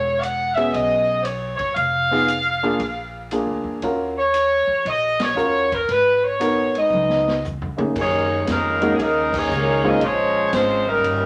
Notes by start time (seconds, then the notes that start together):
Already playing: E1 C#5
0.20 F#5, hi-hat pedal, ride
0.53 B3 C#4 F#4 G#4 E5, ride
0.72 B1 D#5, kick, ride
1.21 C5 C#5, hi-hat pedal, ride
1.56 C#5, muted upright bass stroke, kick, ride
1.75 F1 F5, kick, ride
2.11 B3 D#4 F4 G#4
2.28 hi-hat pedal, ride
2.63 A#3 D4 F4 G#4
2.79 A#1, kick, ride
3.31 A#3 D4 F4 G#4, hi-hat pedal, ride
3.47 D2
3.64 E2
3.82 D#2 C#4 F4 F#4 A#4, kick, ride
4.18 C#5
4.34 hi-hat pedal, ride
4.67 E2
4.85 A#1 D#5, kick, ride
5.20 C#5, snare, ride
5.35 D#2 C#4 F4 F#4 A#4, hi-hat pedal
5.72 A#4, kick, ride
5.89 G#1 B4, kick, ride
6.15 B4
6.24 C#5
6.40 B3 D#4 F#4 A#4, hi-hat pedal, ride
6.75 G#3 B3 D#4 D#5, ride
6.90 C#2, high tom
7.10 snare
7.28 snare
7.44 floor tom, hi-hat pedal
7.62 floor tom
7.77 F#2 A#3 C#4 D#4 G#4, muted upright bass stroke, mid tom
7.96 F#2 D#3 A#3 C#4 D#4 G#4 C#5, kick, crash
8.46 F2 C#3 D#3 A#3 C#4, kick, snare, hi-hat pedal, ride
8.51 G#3 D#4 A#4
8.81 G#3 A#3 C#4 D#4 F#4, ride
8.96 D#2 C#3 D#3 A#3 G#4, kick, ride
9.02 G#3 C#4 D#4 A#4
9.31 D#3 A#3 C#4 G#4, kick, crash
9.35 A#3 D#4 C#5
9.49 C#2, hi-hat pedal
9.83 D#3 G#3 A#3 C4 C#4 D#4 F4 G#4 D#5
9.88 A#4
10.01 A#1 F3 G#3 C#4 F4 C5 C#5, kick, ride
10.53 G#1 F3 G#3 C4 C#4 F4 C5, kick, snare, hi-hat pedal, ride
10.86 C#3 G3 A#3 C#4 D#4 A#4
11.04 G1, kick, ride